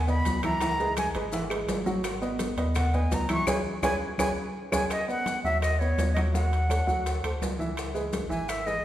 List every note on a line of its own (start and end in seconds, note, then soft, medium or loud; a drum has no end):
0.00 0.22 D#2 loud
0.07 0.37 B3 medium
0.07 0.37 B4 medium
0.07 0.38 D#5 medium
0.07 0.41 B5 loud
0.07 high conga soft
0.07 maracas soft
0.25 1.09 C#2 medium
0.25 high bongo soft
0.25 low bongo medium
0.25 high conga medium
0.25 high timbale medium
0.25 maracas medium
0.43 0.58 E3 medium
0.43 0.59 E4 medium
0.43 0.59 E5 medium
0.43 0.94 A#5 loud
0.43 high bongo soft
0.43 high conga medium
0.43 high timbale loud
0.43 claves medium
0.43 maracas soft
0.61 0.77 E3 medium
0.61 0.76 E4 medium
0.61 0.77 E5 medium
0.61 high bongo medium
0.61 high conga soft
0.61 high timbale medium
0.61 maracas medium
0.80 1.09 G#3 medium
0.80 1.09 G#4 medium
0.80 1.09 B4 medium
0.80 high bongo soft
0.80 high conga soft
0.80 maracas soft
0.97 1.09 G#5 medium
0.97 high bongo medium
0.97 high conga loud
0.97 high timbale loud
0.97 claves medium
0.97 maracas medium
1.15 1.65 G#1 medium
1.15 1.30 G#3 medium
1.15 1.30 G#4 medium
1.15 1.30 B4 medium
1.15 high bongo soft
1.15 high conga soft
1.15 high timbale medium
1.15 maracas soft
1.32 1.47 E3 medium
1.32 1.48 E4 medium
1.32 1.48 E5 medium
1.32 high bongo medium
1.32 high conga soft
1.32 maracas medium
1.50 1.80 G#3 medium
1.50 1.80 G#4 medium
1.50 1.80 B4 medium
1.50 high conga soft
1.50 high timbale loud
1.50 claves medium
1.50 maracas soft
1.68 2.52 G#1 medium
1.68 high bongo soft
1.68 low bongo medium
1.68 high conga medium
1.68 high timbale medium
1.68 low timbale medium
1.68 maracas medium
1.86 2.16 F#3 medium
1.86 2.16 F#4 medium
1.86 2.16 F#5 medium
1.86 high bongo soft
1.86 high conga medium
1.86 maracas soft
2.04 high bongo medium
2.04 high conga soft
2.04 high timbale medium
2.04 claves medium
2.04 maracas medium
2.22 2.51 B3 medium
2.22 2.51 B4 medium
2.22 2.52 D#5 medium
2.22 high bongo soft
2.22 high conga soft
2.22 maracas soft
2.39 high bongo medium
2.39 high conga loud
2.39 high timbale medium
2.39 maracas medium
2.57 3.08 D#2 medium
2.57 2.87 B3 medium
2.57 2.87 B4 medium
2.57 2.87 D#5 medium
2.57 high bongo soft
2.57 high conga soft
2.57 high timbale medium
2.57 maracas soft
2.75 2.96 F#5 medium
2.75 high bongo medium
2.75 high conga soft
2.75 low conga medium
2.75 high timbale medium
2.75 claves medium
2.75 maracas medium
2.94 3.23 B3 medium
2.94 3.23 B4 medium
2.94 3.23 D#5 medium
2.94 3.16 G#5 medium
2.94 high conga soft
2.94 low conga medium
2.94 maracas soft
3.11 3.45 C#2 medium
3.11 3.31 A#5 medium
3.11 high bongo soft
3.11 low bongo medium
3.11 high conga medium
3.11 high timbale medium
3.11 low timbale medium
3.11 maracas medium
3.29 3.44 E3 medium
3.29 3.44 E4 medium
3.29 3.45 E5 medium
3.29 3.48 C#6 loud
3.29 high bongo soft
3.29 high conga medium
3.29 high timbale medium
3.29 claves medium
3.29 maracas soft
3.46 3.60 C#2 loud
3.46 3.59 G#4 loud
3.46 3.59 B4 loud
3.46 3.59 C#5 medium
3.46 3.59 G#5 loud
3.46 low bongo loud
3.46 high conga loud
3.46 high timbale loud
3.46 claves loud
3.46 maracas loud
3.82 3.96 C#2 loud
3.82 3.95 G#4 loud
3.82 3.95 B4 loud
3.82 3.95 C#5 loud
3.82 3.95 G#5 loud
3.82 low bongo loud
3.82 high conga loud
3.82 high timbale loud
3.82 claves medium
3.82 maracas loud
4.18 4.32 C#2 loud
4.18 4.31 G#4 medium
4.18 4.31 B4 loud
4.18 4.30 C#5 medium
4.18 4.31 G#5 loud
4.18 low bongo loud
4.18 high conga loud
4.18 high timbale loud
4.18 claves loud
4.18 maracas loud
4.72 4.86 C#2 loud
4.72 4.84 G#4 loud
4.72 4.84 B4 medium
4.72 4.84 C#5 medium
4.72 4.85 G#5 medium
4.72 low bongo loud
4.72 high conga loud
4.72 high timbale loud
4.72 claves loud
4.72 maracas loud
4.90 5.08 D#5 medium
4.90 high bongo medium
4.90 high conga soft
4.90 high timbale medium
4.90 claves medium
4.90 maracas medium
5.08 5.38 B3 medium
5.08 5.38 B4 medium
5.08 5.38 D#5 medium
5.08 5.42 F#5 loud
5.08 high bongo soft
5.08 high conga soft
5.08 maracas soft
5.26 high bongo medium
5.26 high conga medium
5.26 high timbale medium
5.26 low timbale medium
5.26 maracas medium
5.44 5.94 D#2 medium
5.44 5.74 F#3 medium
5.44 5.74 F#4 medium
5.44 5.61 E5 loud
5.44 5.74 F#5 medium
5.44 high conga soft
5.44 maracas soft
5.61 5.81 D#5 loud
5.61 high bongo medium
5.61 high conga soft
5.61 high timbale medium
5.61 claves medium
5.61 maracas medium
5.79 6.10 B3 medium
5.79 6.10 B4 medium
5.79 6.13 C#5 medium
5.79 6.10 D#5 medium
5.79 high bongo soft
5.79 high conga soft
5.79 maracas soft
5.98 6.82 D#2 medium
5.98 high bongo soft
5.98 low bongo medium
5.98 high conga medium
5.98 high timbale medium
5.98 low timbale medium
5.98 maracas medium
6.14 6.31 F#3 medium
6.14 6.31 F#4 medium
6.14 6.20 D#5 medium
6.14 6.32 F#5 medium
6.14 high bongo soft
6.14 high conga medium
6.14 high timbale medium
6.14 claves medium
6.14 maracas soft
6.33 6.63 F#3 medium
6.33 6.64 F#4 medium
6.33 7.37 F#5 medium
6.33 6.64 F#5 medium
6.33 high bongo medium
6.33 high conga soft
6.33 maracas medium
6.52 high bongo soft
6.52 high conga soft
6.52 high timbale medium
6.52 maracas soft
6.69 6.84 A3 medium
6.69 6.84 A4 medium
6.69 6.85 C#5 medium
6.69 high bongo medium
6.69 high conga medium
6.69 high timbale medium
6.69 low timbale medium
6.69 claves medium
6.69 maracas medium
6.87 7.21 D2 medium
6.87 7.17 F#3 medium
6.87 7.17 F#4 medium
6.87 7.17 F#5 medium
6.87 high conga soft
6.87 maracas soft
7.05 high bongo medium
7.05 high conga soft
7.05 high timbale medium
7.05 maracas medium
7.24 7.40 D2 medium
7.24 7.53 A3 medium
7.24 7.53 A4 medium
7.24 7.53 C5 medium
7.24 high bongo soft
7.24 high conga soft
7.24 high timbale medium
7.24 claves medium
7.24 maracas soft
7.41 8.25 C#2 medium
7.41 high bongo soft
7.41 low bongo medium
7.41 high conga medium
7.41 low timbale medium
7.41 maracas medium
7.59 7.88 E3 medium
7.59 7.89 E4 medium
7.59 7.89 E5 medium
7.59 high bongo soft
7.59 high conga medium
7.59 maracas soft
7.77 high bongo medium
7.77 high conga soft
7.77 high timbale medium
7.77 claves medium
7.77 maracas medium
7.94 8.24 G#3 medium
7.94 8.24 G#4 medium
7.94 8.24 B4 medium
7.94 high bongo soft
7.94 high conga soft
7.94 maracas soft
8.13 high bongo medium
8.13 high conga loud
8.13 high timbale medium
8.13 low timbale medium
8.13 maracas medium
8.29 8.81 G#1 loud
8.29 8.59 E3 medium
8.29 8.60 E4 medium
8.29 8.60 E5 medium
8.29 8.51 G#5 loud
8.29 high conga soft
8.29 maracas soft
8.49 8.68 E5 loud
8.49 high bongo medium
8.49 high conga soft
8.49 high timbale medium
8.49 claves medium
8.49 maracas medium
8.66 8.85 G#3 medium
8.66 8.85 G#4 medium
8.66 8.85 B4 medium
8.66 8.85 D#5 medium
8.66 high bongo soft
8.66 high conga soft
8.66 maracas soft